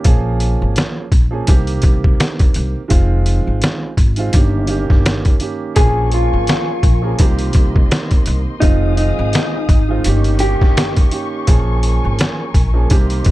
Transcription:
0.04 A#1 F3 A#3 C#4 G#4, kick, closed hi-hat
0.40 closed hi-hat
0.62 G#1
0.76 snare, closed hi-hat
1.12 A#1, kick, closed hi-hat
1.31 F3 A#3 C#4 G#4
1.47 C2 D#3 A#3 C4 G4, kick, closed hi-hat
1.67 closed hi-hat
1.82 C2, kick, closed hi-hat
2.04 kick
2.20 snare, closed hi-hat
2.39 kick, closed hi-hat
2.54 C2, closed hi-hat
2.88 F1 D#3 G#3 C4 F4, kick, closed hi-hat
3.26 closed hi-hat
3.47 G#1
3.62 snare, closed hi-hat
3.97 G#1, kick, closed hi-hat
4.16 D#3 G#3 C4 F4, closed hi-hat
4.33 G1 D#3 A#3 C#4 G4, kick, closed hi-hat
4.67 D#3 A#3 C#4 G4, closed hi-hat
4.90 G1, kick, snare
5.06 snare, closed hi-hat
5.25 kick, closed hi-hat
5.40 D#3 A#3 C#4 G4, closed hi-hat
5.75 A#1 F3 A#3 C#4 G#4 A#4 G#5 C#6, kick, closed hi-hat
6.12 F4, closed hi-hat
6.33 G#1
6.47 snare, closed hi-hat
6.83 A#1, kick, closed hi-hat
7.02 F3 A#3 C#4 G#4
7.19 C2 D#3 A#3 C4 G4 D#5 C6, kick, closed hi-hat
7.39 closed hi-hat
7.53 C2, kick, closed hi-hat
7.76 kick
7.91 snare, closed hi-hat
8.11 kick, closed hi-hat
8.26 C2, closed hi-hat
8.60 F1 D#3 G#3 C4 D#4 F4 G#4 F5 D#6, kick, closed hi-hat
8.97 D#4, closed hi-hat
9.19 G#1
9.33 snare, closed hi-hat
9.69 G#1, kick, closed hi-hat
9.88 D#3 G#3 C4 F4
10.04 G1 D#3 A#3 C#4 G4 D#5 C#6, closed hi-hat
10.24 closed hi-hat
10.39 D#3 A#3 C#4 G4, closed hi-hat
10.61 G1, kick, snare
10.77 snare, closed hi-hat
10.96 kick, closed hi-hat
11.11 D#3 A#3 C#4 G4, closed hi-hat
11.47 A#1 F3 A#3 C#4 G#4 A#4 G#5, kick, closed hi-hat
11.83 closed hi-hat
12.04 G#1
12.19 snare, closed hi-hat
12.54 A#1, kick, closed hi-hat
12.73 F3 A#3 C#4 G#4
12.90 C2 D#3 A#3 C4 G4 D#5 C6, kick, closed hi-hat
13.10 closed hi-hat
13.25 C2, kick, closed hi-hat

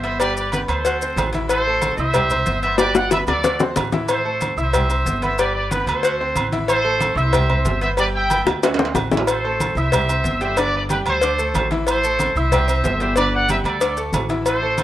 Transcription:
Already playing: G1
0.03 B3 B4 C5 E5 B5, cowbell, maracas
0.20 G3 G4 B4 D5 G5, cowbell, high conga, low agogo, maracas
0.36 B4 D5, high conga, maracas
0.52 B3 G4 B4 B5, cowbell, high conga, low agogo, maracas
0.68 D2 A4 C5, cowbell, low agogo, maracas
0.85 F#4 F#5 F#6, cowbell, high conga, low agogo, maracas
1.02 C4 C5 C6, high conga, maracas
1.16 A1, cowbell, high conga, low timbale, low agogo, maracas
1.33 E3 E4 E5, cowbell, high conga, maracas
1.48 A4 C5, cowbell, high conga, low agogo, maracas
1.66 A3 A4 A5, high conga
1.82 cowbell, high conga, low agogo, maracas
1.97 C2 E4 C5 E5 E6, high conga, maracas
2.14 G3 G4 G5, cowbell, high conga, low conga, low agogo, maracas
2.30 C4 C5 C6, high conga, low conga, low agogo, maracas
2.46 G1, cowbell, high conga, maracas
2.63 B3 B4 C5 E5 B5, cowbell, maracas
2.78 G3 G4 B4 D5 G5, cowbell, high bongo, high conga, low agogo, maracas
2.95 D5 F#5, high bongo, high conga, maracas
3.11 B3 B4 E5 B5, cowbell, high bongo, high conga, low agogo, maracas
3.27 D2 A4 D5, cowbell, low bongo, low agogo, maracas
3.44 F#4 F#5 F#6, cowbell, low bongo, high conga, low agogo, maracas
3.60 C4 C5 C6, low bongo, maracas
3.76 A1, cowbell, low bongo, high conga, low timbale, low agogo, maracas
3.92 E3 E4 E5, cowbell, low bongo, high conga, maracas
4.08 A4 C5, cowbell, high conga, low agogo, maracas
4.25 A3 A4 A5, high conga
4.41 cowbell, high conga, low agogo, maracas
4.57 C2 E4 C5 E5 E6, high conga, maracas
4.73 G3 G4 G5, cowbell, high conga, low conga, low agogo, maracas
4.89 C4 C5 C6, high conga, low agogo, maracas
5.05 G1, cowbell, high conga, maracas
5.22 B3 B4 C5 E5 B5, cowbell, high conga, maracas
5.38 G3 G4 B4 D5 G5, cowbell, high conga, low agogo, maracas
5.55 B4 D5, high conga
5.71 B3 G4 B4 B5, cowbell, high conga, low agogo, maracas
5.86 D2 A4 C5, cowbell, low agogo, maracas
6.03 F#4 F#5 F#6, cowbell, high conga, low agogo, maracas
6.20 C4 C5 C6, high conga
6.35 A1, cowbell, high conga, low agogo, maracas
6.52 E3 E4 E5, cowbell, high conga, maracas
6.68 A4 C5, cowbell, high conga, low agogo, maracas
6.84 A3 A4 A5, high conga
7.00 cowbell, high conga, low agogo, maracas
7.15 C2 E4 C5 E5 E6, high conga, maracas
7.33 G3 G4 G5, cowbell, high conga, low conga, low agogo, maracas
7.50 C4 C5 C6, high conga, low conga, low agogo
7.65 G1, cowbell, high conga, low timbale, maracas
7.81 B3 B4 C5 E5 B5, cowbell, high conga, maracas
7.97 G3 G4 B4 D5 G5, cowbell, high conga, low agogo, maracas
8.15 E5 G5, high conga
8.30 B3 B4 B5, cowbell, high conga, low agogo, maracas
8.45 D2, cowbell, high bongo, low agogo, maracas
8.63 F#4 F#5 F#6, cowbell, high bongo, high conga, high timbale, low agogo, maracas
8.74 high timbale
8.79 C4 C5 C6, low bongo, high conga
8.85 high timbale
8.95 A1, cowbell, low bongo, high conga, low agogo, maracas
9.12 E3 E4 E5, cowbell, low bongo, high conga, maracas
9.17 low timbale
9.27 A4 C5, cowbell, high conga, low agogo, maracas
9.44 A3 A4 A5, high conga
9.60 cowbell, high conga, low agogo, maracas
9.75 C2 E4 C5 E5 E6, high conga, maracas
9.92 G3 G4 G5, cowbell, high conga, low conga, low agogo, maracas
10.09 C4 C5 C6, high conga, low agogo, maracas
10.24 G1, cowbell, high conga, maracas
10.41 G3 G4 C5 E5 G5, cowbell, maracas
10.57 D3 D4 B4 D5, cowbell, high conga, low agogo, maracas
10.75 B4 D5, high conga
10.89 G3 G4 B4 G5, cowbell, high conga, low agogo, maracas
11.06 D2 A4 C5, cowbell, low agogo, maracas
11.21 D4 D5 D6, cowbell, high conga, low agogo, maracas
11.39 A3 A4 A5, high conga, maracas
11.54 A1, cowbell, high conga, low timbale, low agogo, maracas
11.71 E3 E4 E5, cowbell, high conga, maracas
11.87 A4 C5, cowbell, high conga, low agogo, maracas
12.04 A3 A4 A5, high conga, maracas
12.19 cowbell, high conga, low agogo, maracas
12.35 C2 E4 C5 E5 E6, high conga, maracas
12.52 G3 G4 G5, cowbell, high conga, low conga, low agogo, maracas
12.68 C4 C5 C6, low agogo, maracas
12.84 G1, cowbell, high conga, low timbale, maracas
13.00 G3 G4 C5 E5 G5, cowbell, maracas
13.16 D3 D4 B4 D5, cowbell, high conga, low agogo, maracas
13.34 D5 F#5, high conga
13.49 G3 G4 B4 E5 G5, cowbell, high conga, low agogo, maracas
13.64 D2 A4 D5, cowbell, low agogo, maracas
13.81 D4 D5 D6, cowbell, high conga, low agogo, maracas
13.97 A3 A4 A5, high conga, maracas
14.12 A1, cowbell, high conga, low timbale, low agogo, maracas
14.29 E3 E4 E5, cowbell, high conga, maracas
14.46 A4 C5, cowbell, high conga, low agogo, maracas
14.62 A3 A4 A5, high conga
14.78 cowbell, high conga, low agogo, maracas

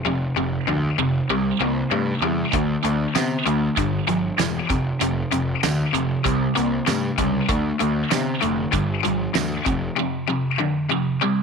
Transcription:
0.05 F1 F2 C3
0.36 F1 F2 C3
0.68 D2 F2 D3
0.99 F1 F2 C3
1.29 C2 C3 G3
1.60 C2 C3 A#3
1.91 G2 C3 A3
2.22 E2 C3 G3
2.52 D2 D3 A3, kick, closed hi-hat
2.83 D2 D3 A3, closed hi-hat
3.15 C3 D3 B3, snare, closed hi-hat, tambourine
3.46 D2 D3 A3, closed hi-hat
3.76 G1 G2 D3, kick, closed hi-hat
4.07 G1 G2 F3, closed hi-hat
4.38 E1 G2 E3, snare, closed hi-hat, tambourine
4.69 F1 F2 C3, kick, closed hi-hat
5.00 F1 F2 C3, closed hi-hat
5.31 F1 F2 C3, closed hi-hat
5.63 D2 F2 D3, snare, closed hi-hat, tambourine
5.94 F1 F2 C3, closed hi-hat
6.24 C2 C3 G3, kick, closed hi-hat
6.55 C2 C3 A#3, closed hi-hat
6.87 G2 C3 A3, snare, closed hi-hat, tambourine
7.18 C#2 C3 G3, kick, closed hi-hat
7.49 D2 D3 A3, kick, closed hi-hat
7.80 D2 D3 A3, closed hi-hat
8.11 C3 D3 B3, snare, closed hi-hat, tambourine
8.42 F1 D3 A3, closed hi-hat
8.73 G1 G2 D3, kick, closed hi-hat
9.05 G1 G2 F3, closed hi-hat
9.35 D2 G2 E3, snare, closed hi-hat, tambourine
9.66 F1 F2 C3, kick, closed hi-hat
9.99 F2 C3
10.29 F2 C3
10.60 F2 D3
10.91 F2 C3
11.22 C3 G3

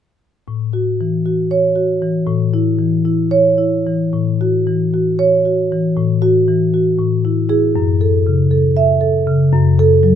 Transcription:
0.48 A2
0.73 F#4
1.01 E3
1.26 F#4
1.51 C#5
1.76 F#4
2.02 E3
2.27 A2
2.54 E4
2.79 E3
3.05 E4
3.31 C#5
3.58 E4
3.87 E3
4.13 A2
4.41 F#4
4.67 E3
4.94 F#4
5.19 C#5
5.45 F#4
5.72 E3
5.97 A2
6.22 F#4
6.48 E3
6.74 F#4
6.99 A2
7.25 E4
7.49 E4 G#4
7.76 F#2
8.01 A4
8.27 C#3
8.51 A4
8.77 E5
9.01 A4
9.27 C#3
9.52 F#2
9.79 A4
10.03 F#3

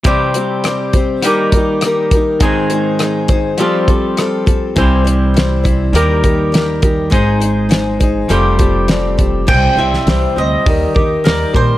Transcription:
0.04 C3 E3 G3 C4 E4 G4 C5, kick, closed hi-hat
0.34 G3 C4 G4 C5, closed hi-hat
0.64 G3 C4 G4, cross-stick, closed hi-hat
0.68 C5
0.93 C4 G4 C5, kick, closed hi-hat
0.98 G3
1.22 D#3 G3 A#3 D#4 G4, closed hi-hat
1.27 A#4
1.52 A#4, kick, closed hi-hat
1.56 D#4 G4
1.81 G3 D#4, cross-stick, closed hi-hat
1.86 G4 A#4
2.11 G4 A#4, kick, closed hi-hat
2.16 D#4
2.40 G#2 D#3 G#3 C4 D#4 G#4, kick, closed hi-hat
2.44 C5
2.70 G#4 C5, closed hi-hat
2.74 D#4
2.99 G#3 D#4 G#4 C5, cross-stick, closed hi-hat
3.28 G#4 C5, kick, closed hi-hat
3.33 D#4
3.58 F3 G3 C4 F4 G4 A4, closed hi-hat
3.88 C4 G4 A4, kick, closed hi-hat
4.17 G3 C4 G4 A4, cross-stick, closed hi-hat
4.46 C4 G4 A4, kick, closed hi-hat
4.76 C2 C3 E3 G3 C4 E4 C5, kick, closed hi-hat
5.04 G3 C4 E4 C5, closed hi-hat
5.34 G3 C4 E4 C5, snare, closed hi-hat
5.63 G3 C4 E4 C5, kick, closed hi-hat
5.93 D#2 D#3 G3 A#3 D#4 G4 A#4, closed hi-hat
6.24 D#4 G4 A#4, kick, closed hi-hat
6.52 G3 D#4 G4 A#4, snare, closed hi-hat
6.82 D#4 G4 A#4, kick, closed hi-hat
7.10 G#1 G#3 D#4 G#4 C5, kick, closed hi-hat
7.40 D#4 G#4 C5, closed hi-hat
7.69 G#3 D#4 G#4 C5, snare, closed hi-hat
8.00 D#4 G#4 C5, kick, closed hi-hat
8.29 F1 F3 G3 A3 C4 G4 A4 C5, closed hi-hat
8.59 C4 G4 A4, kick, closed hi-hat
8.88 G3 C4 G4 A4, snare, closed hi-hat
9.18 C4 G4 A4, kick, closed hi-hat
9.47 C2 C3 E3 G3 C4 E4 C5 G5, kick, crash
9.76 C2 C4 E4 C5 E5
9.81 G3
9.94 snare
10.07 C2 C3 E3 G3 C4 E4 C5, snare, open hi-hat
10.36 D2 G3 C4 E4 C5 D#5
10.66 D#2 D#3 G3 D#4 G4 A#4, kick, open hi-hat
10.94 D#2 D#4 G4 A#4, kick
11.24 D#2 D#3 G3 D#4 G4 A#4 D5, snare, open hi-hat
11.53 A#2 G3 G4 A#4 C5, kick
11.57 D#4

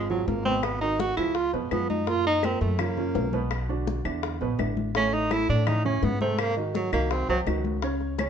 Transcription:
Already playing: G#1
0.09 F3 F#3 F4 G#4, high bongo, high conga, low conga
0.27 G#1 A#3, high bongo, low bongo, high conga
0.45 B2 B3 C4 B4, high conga
0.63 B3, high bongo, high conga, claves
0.81 D#3 D#4 F#4, high bongo, high conga
0.99 F#4, high bongo, high conga
1.17 C#2 F3 E4 F4 G#4, high bongo, high conga, claves
1.35 F4, high bongo, high conga
1.53 F2 B2 G#3 B3 B4, high bongo, high conga
1.71 F#2 F3 B3 F4 G#4, high bongo, low bongo, high conga, claves
1.90 D#4, high conga
2.07 A#2 A#3 F4 A#4, high bongo
2.25 D#4, high bongo, high conga
2.43 A#2 A#3 C4 A#4, high bongo, high conga, claves
2.61 F#2 A3, high bongo, high conga
2.79 C#3 A#3 C#4 F4, high bongo, high conga, low conga, claves
2.97 C#3 C#4 F4, high bongo, high conga, low conga
3.15 B1, high bongo, low bongo, high conga
3.33 B2 B3 B4, high conga
3.51 high bongo, high conga, claves
3.69 D3 D4 F#4, high bongo, high conga
3.87 high bongo, high conga
4.05 E2 D3 D4 E4, high bongo, high conga, claves
4.23 high bongo, high conga
4.41 A#1 B2 B3 B4, high bongo, high conga
4.59 A1 D3 D4 E4, high bongo, low bongo, high conga, claves
4.77 high conga
4.95 A2 A3 C#4 A4, high bongo
5.13 D#4, high bongo, high conga
5.31 A2 A3 E4 A4, high bongo, high conga, claves
5.49 A2 D4, high bongo
5.67 C#3 C#4 D#4 E4, high bongo, high conga, low conga, claves
5.85 C#3 C#4 E4, high bongo, high conga, low conga
6.03 G#2 B3, high bongo, low bongo, high conga
6.21 C3 A3 C4 C5, high conga
6.39 A#3, high bongo, high conga, claves
6.57 D#3 D#4 F#4, high bongo, high conga
6.75 F#3, high bongo, high conga
6.92 C2 D#3 A#3 D#4 F#4, high bongo, high conga, claves
7.11 C4, high bongo, high conga
7.29 C2 C3 F#3 C4 C5, high bongo, high conga
7.47 C#2 D#3 D#4 F#4, high bongo, low bongo, high conga, claves
7.65 high conga
7.82 C#3 C#4 C#5, high bongo
8.00 high bongo, high conga
8.18 C#3 C#4 C#5, high bongo, high conga, claves

